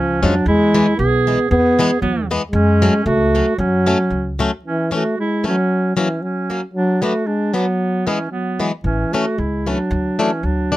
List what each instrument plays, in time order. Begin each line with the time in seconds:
Already playing: upright bass C#2, euphonium F3, clarinet C#4
0.23 upright bass F2, steel-string acoustic guitar F3 G#3 C#4, euphonium F#3, clarinet D4
0.46 upright bass E2, euphonium G#3, clarinet E4
0.75 steel-string acoustic guitar E3 G#3 B3
0.97 upright bass B1, euphonium B3, clarinet G#4
1.27 steel-string acoustic guitar E3 G#3 B3
1.49 upright bass E2, euphonium B3, clarinet G#4
1.79 steel-string acoustic guitar E3 G#3 B3
2.01 upright bass E2, euphonium F#3, clarinet B3
2.31 steel-string acoustic guitar E3 G#3 B3
2.51 upright bass F#2, euphonium G#3, clarinet C#4
2.82 steel-string acoustic guitar F#3 A3 C#4
3.04 upright bass C#2, euphonium A3, clarinet F#4
3.35 steel-string acoustic guitar F#3 A3 C#4
3.57 upright bass F#2, euphonium F#3, clarinet C#4
3.87 steel-string acoustic guitar F#3 A3 C#4
4.10 upright bass C#2
4.39 steel-string acoustic guitar F#3 A3 C#4
4.64 euphonium E3, clarinet C#4
4.91 steel-string acoustic guitar E3 A3 C#4, euphonium A3
4.96 clarinet F#4
5.18 euphonium G#3, clarinet E4
5.44 steel-string acoustic guitar E3 A3 C#4, euphonium F#3, clarinet C#4
5.97 euphonium E3, steel-string acoustic guitar F#3 A#3 C#4, clarinet C#4
6.21 euphonium F#3, clarinet C#4
6.50 steel-string acoustic guitar F#3 A#3 C#4
6.73 euphonium F#3, clarinet D4
7.02 steel-string acoustic guitar F#3 B3 D4, euphonium A3, clarinet F#4
7.26 euphonium G#3, clarinet D4
7.53 euphonium F#3, steel-string acoustic guitar F#3 B3 D4, clarinet B3
8.07 steel-string acoustic guitar E3 G#3 B3, euphonium E3, clarinet C#4
8.31 euphonium F#3, clarinet B3
8.60 steel-string acoustic guitar E3 G#3 B3
8.84 upright bass A1, euphonium E3, clarinet C#4
9.13 steel-string acoustic guitar E3 A3 C#4, euphonium A3, clarinet F#4
9.37 upright bass C#2, euphonium G#3, clarinet E4
9.66 steel-string acoustic guitar E3 A3 C#4, euphonium F#3, clarinet D4
9.91 upright bass D2
10.19 euphonium E3, steel-string acoustic guitar F#3 A3 D4, clarinet C#4
10.43 upright bass D2, euphonium F#3, clarinet D4
10.72 steel-string acoustic guitar F#3 A3 D4